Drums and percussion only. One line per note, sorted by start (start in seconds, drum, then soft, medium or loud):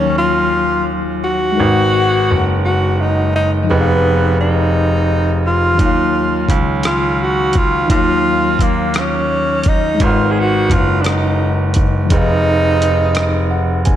5.79 kick loud
5.79 closed hi-hat medium
6.49 kick medium
6.49 closed hi-hat medium
6.83 cross-stick loud
6.83 closed hi-hat medium
7.53 kick medium
7.53 closed hi-hat medium
7.90 kick loud
7.90 closed hi-hat medium
8.59 kick medium
8.59 closed hi-hat medium
8.94 cross-stick loud
8.94 closed hi-hat medium
9.63 kick medium
9.63 closed hi-hat medium
10.00 kick loud
10.00 closed hi-hat medium
10.70 kick medium
10.70 closed hi-hat medium
11.04 cross-stick loud
11.04 closed hi-hat medium
11.74 kick medium
11.74 closed hi-hat medium
12.10 kick loud
12.10 closed hi-hat medium
12.82 closed hi-hat medium
13.15 cross-stick loud
13.15 closed hi-hat medium
13.85 kick medium
13.85 closed hi-hat medium